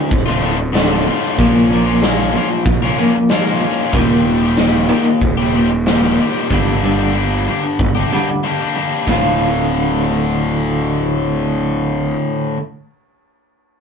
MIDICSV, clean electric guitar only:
0, 0, Header, 1, 2, 480
1, 0, Start_track
1, 0, Tempo, 641026
1, 1030, Time_signature, 4, 2, 24, 8
1, 10336, End_track
2, 0, Start_track
2, 0, Title_t, "Clean electric guitar"
2, 0, Program_c, 0, 27
2, 90, Note_on_c, 0, 38, 55
2, 94, Note_on_c, 0, 45, 62
2, 297, Note_off_c, 0, 38, 0
2, 300, Note_off_c, 0, 45, 0
2, 320, Note_on_c, 0, 38, 65
2, 326, Note_on_c, 0, 45, 78
2, 532, Note_off_c, 0, 38, 0
2, 535, Note_off_c, 0, 45, 0
2, 561, Note_on_c, 0, 38, 79
2, 567, Note_on_c, 0, 45, 79
2, 569, Note_on_c, 0, 50, 96
2, 781, Note_off_c, 0, 38, 0
2, 785, Note_off_c, 0, 45, 0
2, 785, Note_off_c, 0, 50, 0
2, 799, Note_on_c, 0, 38, 63
2, 803, Note_on_c, 0, 45, 61
2, 1011, Note_off_c, 0, 38, 0
2, 1012, Note_off_c, 0, 45, 0
2, 1035, Note_on_c, 0, 46, 84
2, 1044, Note_on_c, 0, 58, 87
2, 1045, Note_on_c, 0, 53, 85
2, 1257, Note_off_c, 0, 46, 0
2, 1262, Note_off_c, 0, 53, 0
2, 1262, Note_off_c, 0, 58, 0
2, 1269, Note_on_c, 0, 46, 91
2, 1276, Note_on_c, 0, 53, 84
2, 1281, Note_on_c, 0, 58, 96
2, 1494, Note_off_c, 0, 46, 0
2, 1498, Note_off_c, 0, 53, 0
2, 1500, Note_off_c, 0, 58, 0
2, 1521, Note_on_c, 0, 46, 65
2, 1526, Note_on_c, 0, 53, 72
2, 1731, Note_off_c, 0, 46, 0
2, 1733, Note_off_c, 0, 53, 0
2, 1762, Note_on_c, 0, 46, 57
2, 1767, Note_on_c, 0, 53, 67
2, 1971, Note_off_c, 0, 46, 0
2, 1973, Note_off_c, 0, 53, 0
2, 1997, Note_on_c, 0, 46, 57
2, 2000, Note_on_c, 0, 53, 68
2, 2208, Note_off_c, 0, 46, 0
2, 2210, Note_off_c, 0, 53, 0
2, 2234, Note_on_c, 0, 46, 75
2, 2239, Note_on_c, 0, 53, 92
2, 2244, Note_on_c, 0, 58, 94
2, 2456, Note_off_c, 0, 46, 0
2, 2458, Note_off_c, 0, 53, 0
2, 2461, Note_off_c, 0, 58, 0
2, 2472, Note_on_c, 0, 53, 76
2, 2474, Note_on_c, 0, 46, 57
2, 2685, Note_off_c, 0, 53, 0
2, 2686, Note_off_c, 0, 46, 0
2, 2704, Note_on_c, 0, 46, 63
2, 2706, Note_on_c, 0, 53, 66
2, 2921, Note_off_c, 0, 46, 0
2, 2922, Note_off_c, 0, 53, 0
2, 2948, Note_on_c, 0, 39, 80
2, 2952, Note_on_c, 0, 46, 82
2, 2953, Note_on_c, 0, 51, 88
2, 3173, Note_off_c, 0, 39, 0
2, 3174, Note_off_c, 0, 46, 0
2, 3175, Note_off_c, 0, 51, 0
2, 3185, Note_on_c, 0, 46, 73
2, 3186, Note_on_c, 0, 39, 64
2, 3401, Note_off_c, 0, 46, 0
2, 3402, Note_off_c, 0, 39, 0
2, 3429, Note_on_c, 0, 39, 64
2, 3431, Note_on_c, 0, 46, 71
2, 3643, Note_off_c, 0, 39, 0
2, 3644, Note_off_c, 0, 46, 0
2, 3661, Note_on_c, 0, 39, 77
2, 3663, Note_on_c, 0, 46, 90
2, 3663, Note_on_c, 0, 51, 95
2, 3889, Note_off_c, 0, 39, 0
2, 3890, Note_off_c, 0, 46, 0
2, 3890, Note_off_c, 0, 51, 0
2, 3911, Note_on_c, 0, 39, 58
2, 3911, Note_on_c, 0, 46, 73
2, 4124, Note_off_c, 0, 39, 0
2, 4124, Note_off_c, 0, 46, 0
2, 4157, Note_on_c, 0, 39, 63
2, 4157, Note_on_c, 0, 46, 69
2, 4367, Note_off_c, 0, 39, 0
2, 4368, Note_off_c, 0, 46, 0
2, 4388, Note_on_c, 0, 39, 76
2, 4393, Note_on_c, 0, 46, 74
2, 4393, Note_on_c, 0, 51, 87
2, 4612, Note_off_c, 0, 39, 0
2, 4615, Note_off_c, 0, 46, 0
2, 4615, Note_off_c, 0, 51, 0
2, 4640, Note_on_c, 0, 39, 56
2, 4640, Note_on_c, 0, 46, 63
2, 4849, Note_off_c, 0, 39, 0
2, 4849, Note_off_c, 0, 46, 0
2, 4875, Note_on_c, 0, 43, 71
2, 4878, Note_on_c, 0, 50, 71
2, 4884, Note_on_c, 0, 55, 76
2, 5096, Note_off_c, 0, 43, 0
2, 5098, Note_off_c, 0, 50, 0
2, 5101, Note_off_c, 0, 55, 0
2, 5114, Note_on_c, 0, 43, 75
2, 5116, Note_on_c, 0, 50, 90
2, 5121, Note_on_c, 0, 55, 88
2, 5336, Note_off_c, 0, 43, 0
2, 5337, Note_off_c, 0, 50, 0
2, 5339, Note_off_c, 0, 55, 0
2, 5357, Note_on_c, 0, 43, 60
2, 5366, Note_on_c, 0, 50, 68
2, 5568, Note_off_c, 0, 43, 0
2, 5573, Note_off_c, 0, 50, 0
2, 5600, Note_on_c, 0, 43, 58
2, 5603, Note_on_c, 0, 50, 65
2, 5810, Note_off_c, 0, 43, 0
2, 5811, Note_off_c, 0, 50, 0
2, 5848, Note_on_c, 0, 43, 56
2, 5851, Note_on_c, 0, 50, 60
2, 6054, Note_off_c, 0, 43, 0
2, 6056, Note_off_c, 0, 50, 0
2, 6076, Note_on_c, 0, 43, 69
2, 6085, Note_on_c, 0, 50, 75
2, 6090, Note_on_c, 0, 55, 83
2, 6298, Note_off_c, 0, 43, 0
2, 6302, Note_off_c, 0, 50, 0
2, 6305, Note_off_c, 0, 55, 0
2, 6315, Note_on_c, 0, 43, 58
2, 6321, Note_on_c, 0, 50, 61
2, 6528, Note_off_c, 0, 43, 0
2, 6531, Note_off_c, 0, 50, 0
2, 6558, Note_on_c, 0, 43, 51
2, 6560, Note_on_c, 0, 50, 56
2, 6770, Note_off_c, 0, 43, 0
2, 6771, Note_off_c, 0, 50, 0
2, 6797, Note_on_c, 0, 38, 83
2, 6803, Note_on_c, 0, 45, 78
2, 6812, Note_on_c, 0, 50, 75
2, 6812, Note_on_c, 0, 57, 77
2, 6824, Note_on_c, 0, 65, 81
2, 9418, Note_off_c, 0, 38, 0
2, 9424, Note_off_c, 0, 45, 0
2, 9432, Note_off_c, 0, 50, 0
2, 9433, Note_off_c, 0, 57, 0
2, 9445, Note_off_c, 0, 65, 0
2, 10336, End_track
0, 0, End_of_file